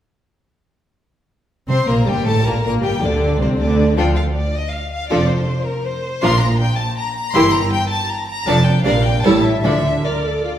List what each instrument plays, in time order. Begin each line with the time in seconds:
1.68 double bass section C2, cello section C3, viola section C4, violin section C5 C6
1.87 double bass section A#1, cello section A#2, viola section A#3, violin section A#4 A#5
2.05 double bass section G1, cello section G2, viola section G3, violin section G4 G5
2.26 double bass section A1, cello section A2, viola section A3, violin section A4 A5
2.45 double bass section A#1, cello section A#2, viola section A#3, violin section A#4 A#5
2.64 double bass section A#1, cello section A#2, viola section A#3, violin section A#4 A#5
2.83 double bass section G1, cello section G2, viola section G3, violin section G4 G5
3.01 double bass section D2, cello section D2, viola section D3, violin section D4 D5
3.41 cello section C2, double bass section C2, viola section C3, violin section C4 C5
3.59 cello section D2, double bass section D2, viola section D3, violin section D4 D5
3.97 double bass section D2, cello section D2, viola section F3 D4, violin section F4 A4 G5
4.16 violin section F5
4.36 violin section D5
4.54 violin section D#5
4.72 violin section F5
4.92 violin section F5
5.09 double bass section F1, cello section F2, viola section F3 D4, violin section F4 A4 D5
5.28 violin section C5
5.65 violin section A#4
5.85 violin section C5
6.22 double bass section A#1, cello section A#2, viola section F3 D4, violin section F4 A#4 C6
6.40 violin section A#5
6.59 violin section G5
6.77 violin section A5
6.98 violin section A#5
7.15 violin section A#5
7.33 double bass section G1, cello section G2, viola section E3 E4, violin section G4 A#4 C6
7.53 violin section A#5
7.73 violin section G5
7.90 violin section A5
8.08 violin section A#5
8.28 violin section A#5
8.46 double bass section F1, cello section F2, viola section F3 D4, violin section A4 D5 A5
8.65 violin section G5
8.84 double bass section A#1, cello section A#2, viola section G3 D4, violin section A#4 D5 F5
9.03 violin section G5
9.23 double bass section A1, cello section A2, viola section G3 E4, violin section A4 C#5 A5
9.42 violin section E5
9.63 double bass section D2, timpani D3, cello section D3, viola section F3 D4, violin section A4 D5 E5
10.04 viola section A#4, violin section D5
10.25 viola section A4
10.44 viola section F4